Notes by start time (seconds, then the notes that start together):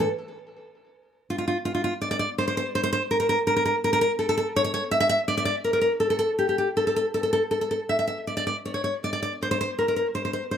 0.00 A4
1.30 F4
1.38 F4
1.48 F4
1.65 F4
1.75 F4
1.84 F4
2.01 D5
2.11 D5
2.19 D5
2.38 C5
2.48 C5
2.57 C5
2.75 C5
2.83 C5
2.93 C5
3.11 A#4
3.20 A#4
3.29 A#4
3.47 A#4
3.56 A#4
3.65 A#4
3.84 A#4
3.93 A#4
4.01 A#4
4.19 A4
4.29 A4
4.38 A4
4.56 C#5
4.74 C#5
4.91 E5
5.00 E5
5.09 E5
5.28 D5
5.37 D5
5.45 D5
5.64 A#4
5.73 A#4
5.81 A#4
6.00 A4
6.10 A4
6.19 A4
6.39 G4
6.49 G4
6.58 G4
6.77 A4
6.87 A4
6.96 A4
7.14 A4
7.23 A4
7.33 A4
7.51 A4
7.61 A4
7.71 A4
7.89 E5
7.99 E5
8.07 E5
8.27 D5
8.37 D5
8.47 D5
8.65 C#5
8.74 C#5
8.84 C#5
9.04 D5
9.13 D5
9.23 D5
9.42 C5
9.51 C5
9.61 C5
9.79 A#4
9.88 A#4
9.96 A#4
10.15 C5
10.25 C5
10.33 C5
10.51 C5